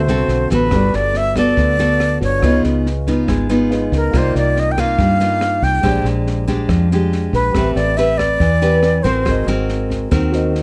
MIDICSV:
0, 0, Header, 1, 6, 480
1, 0, Start_track
1, 0, Tempo, 426439
1, 816, Time_signature, 4, 2, 24, 8
1, 11961, End_track
2, 0, Start_track
2, 0, Title_t, "Flute"
2, 0, Program_c, 0, 73
2, 0, Note_on_c, 0, 72, 70
2, 577, Note_off_c, 0, 72, 0
2, 598, Note_on_c, 0, 71, 78
2, 1074, Note_on_c, 0, 74, 83
2, 1091, Note_off_c, 0, 71, 0
2, 1318, Note_on_c, 0, 76, 94
2, 1335, Note_off_c, 0, 74, 0
2, 1547, Note_off_c, 0, 76, 0
2, 1553, Note_on_c, 0, 74, 88
2, 2460, Note_off_c, 0, 74, 0
2, 2514, Note_on_c, 0, 73, 77
2, 2952, Note_off_c, 0, 73, 0
2, 4456, Note_on_c, 0, 70, 68
2, 4698, Note_on_c, 0, 72, 76
2, 4715, Note_off_c, 0, 70, 0
2, 4918, Note_off_c, 0, 72, 0
2, 4929, Note_on_c, 0, 74, 75
2, 5171, Note_on_c, 0, 75, 85
2, 5188, Note_off_c, 0, 74, 0
2, 5308, Note_on_c, 0, 79, 67
2, 5324, Note_off_c, 0, 75, 0
2, 5401, Note_on_c, 0, 77, 84
2, 5418, Note_off_c, 0, 79, 0
2, 6343, Note_on_c, 0, 79, 84
2, 6359, Note_off_c, 0, 77, 0
2, 6820, Note_off_c, 0, 79, 0
2, 8265, Note_on_c, 0, 71, 76
2, 8708, Note_off_c, 0, 71, 0
2, 8725, Note_on_c, 0, 74, 85
2, 8973, Note_on_c, 0, 76, 91
2, 8990, Note_off_c, 0, 74, 0
2, 9203, Note_on_c, 0, 74, 93
2, 9220, Note_off_c, 0, 76, 0
2, 10165, Note_on_c, 0, 72, 77
2, 10182, Note_off_c, 0, 74, 0
2, 10651, Note_off_c, 0, 72, 0
2, 11961, End_track
3, 0, Start_track
3, 0, Title_t, "Grand piano"
3, 0, Program_c, 1, 0
3, 0, Note_on_c, 1, 66, 49
3, 0, Note_on_c, 1, 69, 45
3, 0, Note_on_c, 1, 72, 44
3, 0, Note_on_c, 1, 76, 55
3, 37, Control_c, 1, 64, 127
3, 752, Note_off_c, 1, 66, 0
3, 768, Note_on_c, 1, 66, 45
3, 784, Note_off_c, 1, 69, 0
3, 801, Note_on_c, 1, 69, 39
3, 802, Note_off_c, 1, 72, 0
3, 812, Note_off_c, 1, 76, 0
3, 821, Note_on_c, 1, 71, 41
3, 830, Control_c, 1, 64, 0
3, 845, Note_on_c, 1, 74, 49
3, 1035, Control_c, 1, 64, 127
3, 2439, Note_off_c, 1, 66, 0
3, 2455, Note_off_c, 1, 69, 0
3, 2466, Note_off_c, 1, 71, 0
3, 2476, Note_on_c, 1, 66, 35
3, 2478, Note_off_c, 1, 74, 0
3, 2489, Note_on_c, 1, 69, 30
3, 2501, Note_on_c, 1, 71, 30
3, 2514, Note_on_c, 1, 74, 38
3, 2691, Note_on_c, 1, 65, 45
3, 2713, Note_on_c, 1, 68, 41
3, 2727, Note_off_c, 1, 66, 0
3, 2727, Note_off_c, 1, 71, 0
3, 2733, Note_off_c, 1, 69, 0
3, 2744, Note_on_c, 1, 71, 41
3, 2745, Note_off_c, 1, 74, 0
3, 2749, Control_c, 1, 64, 0
3, 2756, Note_on_c, 1, 75, 54
3, 2931, Control_c, 1, 64, 127
3, 4125, Note_off_c, 1, 65, 0
3, 4136, Note_off_c, 1, 68, 0
3, 4152, Note_off_c, 1, 71, 0
3, 4158, Note_off_c, 1, 75, 0
3, 4159, Note_on_c, 1, 65, 41
3, 4168, Note_on_c, 1, 68, 37
3, 4178, Note_on_c, 1, 71, 39
3, 4191, Note_on_c, 1, 75, 47
3, 4609, Note_off_c, 1, 65, 0
3, 4626, Note_on_c, 1, 65, 48
3, 4648, Note_on_c, 1, 70, 43
3, 4653, Note_off_c, 1, 68, 0
3, 4658, Note_off_c, 1, 71, 0
3, 4664, Note_off_c, 1, 75, 0
3, 4673, Note_on_c, 1, 74, 43
3, 4674, Control_c, 1, 64, 0
3, 4698, Note_on_c, 1, 75, 52
3, 4850, Control_c, 1, 64, 127
3, 6524, Note_off_c, 1, 65, 0
3, 6535, Note_off_c, 1, 70, 0
3, 6537, Note_on_c, 1, 67, 47
3, 6547, Note_off_c, 1, 74, 0
3, 6560, Note_off_c, 1, 75, 0
3, 6583, Note_on_c, 1, 72, 41
3, 6593, Control_c, 1, 64, 0
3, 6608, Note_on_c, 1, 74, 47
3, 6772, Control_c, 1, 64, 127
3, 8439, Note_off_c, 1, 67, 0
3, 8461, Note_on_c, 1, 67, 45
3, 8462, Note_off_c, 1, 72, 0
3, 8475, Note_off_c, 1, 74, 0
3, 8482, Note_on_c, 1, 71, 40
3, 8514, Control_c, 1, 64, 0
3, 8528, Note_on_c, 1, 76, 54
3, 8699, Control_c, 1, 64, 127
3, 10361, Note_off_c, 1, 67, 0
3, 10372, Note_off_c, 1, 71, 0
3, 10395, Note_off_c, 1, 76, 0
3, 10412, Note_on_c, 1, 66, 48
3, 10426, Note_on_c, 1, 70, 41
3, 10435, Control_c, 1, 64, 0
3, 10453, Note_on_c, 1, 72, 42
3, 10476, Note_on_c, 1, 75, 53
3, 10649, Control_c, 1, 64, 127
3, 11591, Note_off_c, 1, 66, 0
3, 11599, Note_off_c, 1, 70, 0
3, 11612, Note_off_c, 1, 72, 0
3, 11612, Note_on_c, 1, 66, 43
3, 11624, Note_off_c, 1, 75, 0
3, 11627, Note_on_c, 1, 70, 40
3, 11640, Note_on_c, 1, 72, 38
3, 11649, Note_on_c, 1, 75, 45
3, 11961, Note_off_c, 1, 66, 0
3, 11961, Note_off_c, 1, 70, 0
3, 11961, Note_off_c, 1, 72, 0
3, 11961, Note_off_c, 1, 75, 0
3, 11961, End_track
4, 0, Start_track
4, 0, Title_t, "Nylon-string guitar"
4, 0, Program_c, 2, 24
4, 0, Note_on_c, 2, 50, 53
4, 98, Note_on_c, 2, 66, 58
4, 102, Note_on_c, 2, 60, 58
4, 109, Note_on_c, 2, 69, 59
4, 539, Note_off_c, 2, 66, 0
4, 541, Note_off_c, 2, 60, 0
4, 544, Note_off_c, 2, 69, 0
4, 578, Note_on_c, 2, 59, 60
4, 583, Note_on_c, 2, 66, 64
4, 591, Note_on_c, 2, 69, 61
4, 792, Note_off_c, 2, 50, 0
4, 818, Note_on_c, 2, 55, 51
4, 1278, Note_off_c, 2, 59, 0
4, 1282, Note_off_c, 2, 66, 0
4, 1283, Note_off_c, 2, 69, 0
4, 1540, Note_on_c, 2, 59, 62
4, 1543, Note_on_c, 2, 66, 55
4, 1551, Note_on_c, 2, 69, 61
4, 1753, Note_off_c, 2, 55, 0
4, 1776, Note_on_c, 2, 50, 53
4, 1980, Note_off_c, 2, 59, 0
4, 1981, Note_off_c, 2, 66, 0
4, 1985, Note_off_c, 2, 69, 0
4, 2014, Note_on_c, 2, 59, 52
4, 2021, Note_on_c, 2, 66, 55
4, 2022, Note_on_c, 2, 69, 60
4, 2697, Note_off_c, 2, 59, 0
4, 2700, Note_off_c, 2, 69, 0
4, 2701, Note_off_c, 2, 66, 0
4, 2712, Note_off_c, 2, 50, 0
4, 2739, Note_on_c, 2, 49, 51
4, 2740, Note_on_c, 2, 59, 59
4, 2746, Note_on_c, 2, 63, 53
4, 2749, Note_on_c, 2, 65, 61
4, 3215, Note_off_c, 2, 59, 0
4, 3219, Note_off_c, 2, 63, 0
4, 3220, Note_off_c, 2, 65, 0
4, 3462, Note_on_c, 2, 59, 60
4, 3469, Note_on_c, 2, 63, 54
4, 3470, Note_on_c, 2, 65, 63
4, 3674, Note_off_c, 2, 49, 0
4, 3692, Note_on_c, 2, 56, 55
4, 3901, Note_off_c, 2, 59, 0
4, 3903, Note_off_c, 2, 63, 0
4, 3905, Note_off_c, 2, 65, 0
4, 3933, Note_on_c, 2, 59, 54
4, 3937, Note_on_c, 2, 63, 56
4, 3939, Note_on_c, 2, 65, 61
4, 4617, Note_off_c, 2, 63, 0
4, 4618, Note_off_c, 2, 59, 0
4, 4620, Note_off_c, 2, 65, 0
4, 4631, Note_off_c, 2, 56, 0
4, 4666, Note_on_c, 2, 48, 56
4, 4666, Note_on_c, 2, 58, 55
4, 4671, Note_on_c, 2, 63, 55
4, 4674, Note_on_c, 2, 65, 59
4, 5343, Note_off_c, 2, 58, 0
4, 5345, Note_off_c, 2, 63, 0
4, 5347, Note_off_c, 2, 65, 0
4, 5377, Note_on_c, 2, 58, 61
4, 5382, Note_on_c, 2, 63, 59
4, 5391, Note_on_c, 2, 65, 70
4, 5598, Note_off_c, 2, 48, 0
4, 5621, Note_on_c, 2, 55, 49
4, 5819, Note_off_c, 2, 58, 0
4, 5823, Note_off_c, 2, 63, 0
4, 5824, Note_off_c, 2, 65, 0
4, 5855, Note_on_c, 2, 58, 52
4, 5865, Note_on_c, 2, 63, 52
4, 5871, Note_on_c, 2, 65, 57
4, 6538, Note_off_c, 2, 58, 0
4, 6544, Note_off_c, 2, 63, 0
4, 6545, Note_off_c, 2, 65, 0
4, 6555, Note_off_c, 2, 55, 0
4, 6562, Note_on_c, 2, 56, 50
4, 6563, Note_on_c, 2, 46, 54
4, 6567, Note_on_c, 2, 62, 53
4, 6569, Note_on_c, 2, 67, 59
4, 7251, Note_off_c, 2, 56, 0
4, 7254, Note_off_c, 2, 62, 0
4, 7255, Note_off_c, 2, 67, 0
4, 7289, Note_on_c, 2, 56, 59
4, 7296, Note_on_c, 2, 62, 56
4, 7296, Note_on_c, 2, 67, 62
4, 7507, Note_off_c, 2, 46, 0
4, 7538, Note_on_c, 2, 53, 50
4, 7735, Note_off_c, 2, 56, 0
4, 7737, Note_off_c, 2, 62, 0
4, 7739, Note_off_c, 2, 67, 0
4, 7793, Note_on_c, 2, 56, 53
4, 7797, Note_on_c, 2, 62, 51
4, 7802, Note_on_c, 2, 67, 57
4, 8467, Note_off_c, 2, 56, 0
4, 8469, Note_off_c, 2, 62, 0
4, 8472, Note_off_c, 2, 67, 0
4, 8474, Note_off_c, 2, 53, 0
4, 8510, Note_on_c, 2, 60, 55
4, 8511, Note_on_c, 2, 57, 53
4, 8513, Note_on_c, 2, 67, 50
4, 8516, Note_on_c, 2, 71, 54
4, 8945, Note_off_c, 2, 60, 0
4, 8945, Note_off_c, 2, 67, 0
4, 8949, Note_off_c, 2, 71, 0
4, 8977, Note_on_c, 2, 60, 58
4, 8984, Note_on_c, 2, 67, 52
4, 8991, Note_on_c, 2, 71, 64
4, 9441, Note_off_c, 2, 57, 0
4, 9456, Note_off_c, 2, 60, 0
4, 9457, Note_off_c, 2, 67, 0
4, 9462, Note_off_c, 2, 71, 0
4, 9466, Note_on_c, 2, 52, 51
4, 9701, Note_on_c, 2, 60, 58
4, 9704, Note_on_c, 2, 67, 56
4, 9708, Note_on_c, 2, 71, 55
4, 10142, Note_off_c, 2, 60, 0
4, 10142, Note_off_c, 2, 67, 0
4, 10145, Note_off_c, 2, 71, 0
4, 10177, Note_on_c, 2, 60, 57
4, 10184, Note_on_c, 2, 66, 57
4, 10189, Note_on_c, 2, 70, 58
4, 10398, Note_off_c, 2, 52, 0
4, 10413, Note_on_c, 2, 56, 53
4, 10619, Note_off_c, 2, 60, 0
4, 10622, Note_off_c, 2, 66, 0
4, 10625, Note_off_c, 2, 70, 0
4, 10669, Note_on_c, 2, 60, 66
4, 10670, Note_on_c, 2, 66, 58
4, 10675, Note_on_c, 2, 70, 64
4, 11344, Note_off_c, 2, 66, 0
4, 11346, Note_off_c, 2, 60, 0
4, 11349, Note_off_c, 2, 70, 0
4, 11352, Note_off_c, 2, 56, 0
4, 11383, Note_on_c, 2, 51, 54
4, 11383, Note_on_c, 2, 60, 54
4, 11391, Note_on_c, 2, 66, 53
4, 11394, Note_on_c, 2, 70, 58
4, 11857, Note_off_c, 2, 60, 0
4, 11862, Note_off_c, 2, 66, 0
4, 11863, Note_off_c, 2, 70, 0
4, 11961, Note_off_c, 2, 51, 0
4, 11961, End_track
5, 0, Start_track
5, 0, Title_t, "Fingered electric bass"
5, 0, Program_c, 3, 33
5, 84, Note_on_c, 3, 36, 74
5, 305, Note_off_c, 3, 36, 0
5, 316, Note_on_c, 3, 35, 78
5, 541, Note_off_c, 3, 35, 0
5, 567, Note_on_c, 3, 33, 82
5, 787, Note_off_c, 3, 33, 0
5, 806, Note_on_c, 3, 31, 93
5, 1034, Note_off_c, 3, 31, 0
5, 1055, Note_on_c, 3, 31, 84
5, 1731, Note_off_c, 3, 31, 0
5, 1770, Note_on_c, 3, 38, 85
5, 2449, Note_off_c, 3, 38, 0
5, 2492, Note_on_c, 3, 31, 83
5, 2718, Note_off_c, 3, 31, 0
5, 2727, Note_on_c, 3, 37, 88
5, 2955, Note_off_c, 3, 37, 0
5, 2979, Note_on_c, 3, 37, 82
5, 3653, Note_off_c, 3, 37, 0
5, 3695, Note_on_c, 3, 32, 88
5, 4371, Note_off_c, 3, 32, 0
5, 4413, Note_on_c, 3, 37, 86
5, 4638, Note_off_c, 3, 37, 0
5, 4649, Note_on_c, 3, 36, 89
5, 4876, Note_off_c, 3, 36, 0
5, 4900, Note_on_c, 3, 36, 89
5, 5574, Note_off_c, 3, 36, 0
5, 5611, Note_on_c, 3, 43, 80
5, 6289, Note_off_c, 3, 43, 0
5, 6329, Note_on_c, 3, 36, 85
5, 6556, Note_off_c, 3, 36, 0
5, 6570, Note_on_c, 3, 34, 91
5, 6789, Note_off_c, 3, 34, 0
5, 6796, Note_on_c, 3, 34, 81
5, 7482, Note_off_c, 3, 34, 0
5, 7525, Note_on_c, 3, 41, 80
5, 8206, Note_off_c, 3, 41, 0
5, 8251, Note_on_c, 3, 34, 84
5, 8477, Note_off_c, 3, 34, 0
5, 8497, Note_on_c, 3, 33, 92
5, 8721, Note_off_c, 3, 33, 0
5, 8730, Note_on_c, 3, 33, 78
5, 9409, Note_off_c, 3, 33, 0
5, 9454, Note_on_c, 3, 40, 85
5, 10131, Note_off_c, 3, 40, 0
5, 10181, Note_on_c, 3, 33, 95
5, 10403, Note_off_c, 3, 33, 0
5, 10426, Note_on_c, 3, 32, 95
5, 10645, Note_off_c, 3, 32, 0
5, 10654, Note_on_c, 3, 32, 86
5, 11331, Note_off_c, 3, 32, 0
5, 11387, Note_on_c, 3, 39, 83
5, 11961, Note_off_c, 3, 39, 0
5, 11961, End_track
6, 0, Start_track
6, 0, Title_t, "Drums"
6, 85, Note_on_c, 9, 38, 25
6, 197, Note_off_c, 9, 38, 0
6, 322, Note_on_c, 9, 38, 23
6, 434, Note_off_c, 9, 38, 0
6, 560, Note_on_c, 9, 38, 25
6, 563, Note_on_c, 9, 36, 25
6, 673, Note_off_c, 9, 38, 0
6, 676, Note_off_c, 9, 36, 0
6, 800, Note_on_c, 9, 37, 57
6, 800, Note_on_c, 9, 38, 22
6, 806, Note_on_c, 9, 36, 55
6, 912, Note_off_c, 9, 37, 0
6, 912, Note_off_c, 9, 38, 0
6, 918, Note_off_c, 9, 36, 0
6, 1047, Note_on_c, 9, 38, 23
6, 1159, Note_off_c, 9, 38, 0
6, 1285, Note_on_c, 9, 38, 23
6, 1398, Note_off_c, 9, 38, 0
6, 1527, Note_on_c, 9, 37, 55
6, 1527, Note_on_c, 9, 38, 23
6, 1528, Note_on_c, 9, 36, 23
6, 1640, Note_off_c, 9, 36, 0
6, 1640, Note_off_c, 9, 37, 0
6, 1640, Note_off_c, 9, 38, 0
6, 1770, Note_on_c, 9, 36, 56
6, 1771, Note_on_c, 9, 38, 22
6, 1882, Note_off_c, 9, 36, 0
6, 1884, Note_off_c, 9, 38, 0
6, 2013, Note_on_c, 9, 38, 24
6, 2126, Note_off_c, 9, 38, 0
6, 2253, Note_on_c, 9, 37, 52
6, 2253, Note_on_c, 9, 38, 21
6, 2365, Note_off_c, 9, 37, 0
6, 2365, Note_off_c, 9, 38, 0
6, 2493, Note_on_c, 9, 36, 23
6, 2496, Note_on_c, 9, 38, 23
6, 2605, Note_off_c, 9, 36, 0
6, 2608, Note_off_c, 9, 38, 0
6, 2729, Note_on_c, 9, 37, 55
6, 2729, Note_on_c, 9, 38, 21
6, 2732, Note_on_c, 9, 36, 55
6, 2841, Note_off_c, 9, 37, 0
6, 2841, Note_off_c, 9, 38, 0
6, 2845, Note_off_c, 9, 36, 0
6, 2970, Note_on_c, 9, 38, 23
6, 3083, Note_off_c, 9, 38, 0
6, 3223, Note_on_c, 9, 38, 25
6, 3335, Note_off_c, 9, 38, 0
6, 3454, Note_on_c, 9, 36, 24
6, 3459, Note_on_c, 9, 38, 23
6, 3567, Note_off_c, 9, 36, 0
6, 3572, Note_off_c, 9, 38, 0
6, 3694, Note_on_c, 9, 36, 57
6, 3698, Note_on_c, 9, 37, 55
6, 3698, Note_on_c, 9, 38, 23
6, 3807, Note_off_c, 9, 36, 0
6, 3810, Note_off_c, 9, 37, 0
6, 3810, Note_off_c, 9, 38, 0
6, 3937, Note_on_c, 9, 38, 25
6, 4049, Note_off_c, 9, 38, 0
6, 4178, Note_on_c, 9, 38, 23
6, 4290, Note_off_c, 9, 38, 0
6, 4414, Note_on_c, 9, 36, 23
6, 4418, Note_on_c, 9, 38, 24
6, 4527, Note_off_c, 9, 36, 0
6, 4530, Note_off_c, 9, 38, 0
6, 4655, Note_on_c, 9, 36, 54
6, 4659, Note_on_c, 9, 37, 56
6, 4659, Note_on_c, 9, 38, 21
6, 4768, Note_off_c, 9, 36, 0
6, 4772, Note_off_c, 9, 37, 0
6, 4772, Note_off_c, 9, 38, 0
6, 4901, Note_on_c, 9, 38, 24
6, 5014, Note_off_c, 9, 38, 0
6, 5139, Note_on_c, 9, 38, 24
6, 5252, Note_off_c, 9, 38, 0
6, 5374, Note_on_c, 9, 36, 23
6, 5380, Note_on_c, 9, 37, 56
6, 5380, Note_on_c, 9, 38, 23
6, 5486, Note_off_c, 9, 36, 0
6, 5493, Note_off_c, 9, 37, 0
6, 5493, Note_off_c, 9, 38, 0
6, 5612, Note_on_c, 9, 36, 61
6, 5618, Note_on_c, 9, 38, 23
6, 5725, Note_off_c, 9, 36, 0
6, 5731, Note_off_c, 9, 38, 0
6, 5854, Note_on_c, 9, 38, 23
6, 5967, Note_off_c, 9, 38, 0
6, 6093, Note_on_c, 9, 37, 57
6, 6093, Note_on_c, 9, 38, 23
6, 6205, Note_off_c, 9, 37, 0
6, 6205, Note_off_c, 9, 38, 0
6, 6332, Note_on_c, 9, 36, 22
6, 6339, Note_on_c, 9, 38, 23
6, 6445, Note_off_c, 9, 36, 0
6, 6452, Note_off_c, 9, 38, 0
6, 6569, Note_on_c, 9, 36, 52
6, 6572, Note_on_c, 9, 37, 54
6, 6572, Note_on_c, 9, 38, 21
6, 6681, Note_off_c, 9, 36, 0
6, 6684, Note_off_c, 9, 37, 0
6, 6684, Note_off_c, 9, 38, 0
6, 6813, Note_on_c, 9, 38, 23
6, 6925, Note_off_c, 9, 38, 0
6, 7056, Note_on_c, 9, 38, 24
6, 7169, Note_off_c, 9, 38, 0
6, 7289, Note_on_c, 9, 36, 25
6, 7291, Note_on_c, 9, 38, 22
6, 7402, Note_off_c, 9, 36, 0
6, 7404, Note_off_c, 9, 38, 0
6, 7531, Note_on_c, 9, 36, 59
6, 7532, Note_on_c, 9, 37, 60
6, 7532, Note_on_c, 9, 38, 23
6, 7643, Note_off_c, 9, 36, 0
6, 7645, Note_off_c, 9, 37, 0
6, 7645, Note_off_c, 9, 38, 0
6, 7783, Note_on_c, 9, 38, 23
6, 7896, Note_off_c, 9, 38, 0
6, 8019, Note_on_c, 9, 38, 21
6, 8132, Note_off_c, 9, 38, 0
6, 8253, Note_on_c, 9, 36, 25
6, 8256, Note_on_c, 9, 38, 23
6, 8365, Note_off_c, 9, 36, 0
6, 8369, Note_off_c, 9, 38, 0
6, 8493, Note_on_c, 9, 37, 52
6, 8493, Note_on_c, 9, 38, 21
6, 8495, Note_on_c, 9, 36, 57
6, 8606, Note_off_c, 9, 37, 0
6, 8606, Note_off_c, 9, 38, 0
6, 8607, Note_off_c, 9, 36, 0
6, 8736, Note_on_c, 9, 38, 23
6, 8849, Note_off_c, 9, 38, 0
6, 8978, Note_on_c, 9, 38, 26
6, 9091, Note_off_c, 9, 38, 0
6, 9218, Note_on_c, 9, 36, 23
6, 9223, Note_on_c, 9, 37, 57
6, 9223, Note_on_c, 9, 38, 22
6, 9331, Note_off_c, 9, 36, 0
6, 9335, Note_off_c, 9, 37, 0
6, 9335, Note_off_c, 9, 38, 0
6, 9457, Note_on_c, 9, 36, 54
6, 9459, Note_on_c, 9, 38, 24
6, 9570, Note_off_c, 9, 36, 0
6, 9571, Note_off_c, 9, 38, 0
6, 9699, Note_on_c, 9, 38, 23
6, 9812, Note_off_c, 9, 38, 0
6, 9936, Note_on_c, 9, 37, 52
6, 9936, Note_on_c, 9, 38, 22
6, 10048, Note_off_c, 9, 37, 0
6, 10048, Note_off_c, 9, 38, 0
6, 10183, Note_on_c, 9, 36, 22
6, 10183, Note_on_c, 9, 38, 24
6, 10295, Note_off_c, 9, 36, 0
6, 10296, Note_off_c, 9, 38, 0
6, 10422, Note_on_c, 9, 37, 53
6, 10422, Note_on_c, 9, 38, 22
6, 10423, Note_on_c, 9, 36, 53
6, 10535, Note_off_c, 9, 37, 0
6, 10535, Note_off_c, 9, 38, 0
6, 10536, Note_off_c, 9, 36, 0
6, 10662, Note_on_c, 9, 38, 25
6, 10774, Note_off_c, 9, 38, 0
6, 10906, Note_on_c, 9, 38, 23
6, 11018, Note_off_c, 9, 38, 0
6, 11147, Note_on_c, 9, 36, 22
6, 11150, Note_on_c, 9, 38, 23
6, 11259, Note_off_c, 9, 36, 0
6, 11262, Note_off_c, 9, 38, 0
6, 11388, Note_on_c, 9, 36, 57
6, 11391, Note_on_c, 9, 37, 57
6, 11391, Note_on_c, 9, 38, 23
6, 11500, Note_off_c, 9, 36, 0
6, 11504, Note_off_c, 9, 37, 0
6, 11504, Note_off_c, 9, 38, 0
6, 11627, Note_on_c, 9, 38, 23
6, 11739, Note_off_c, 9, 38, 0
6, 11875, Note_on_c, 9, 38, 22
6, 11961, Note_off_c, 9, 38, 0
6, 11961, End_track
0, 0, End_of_file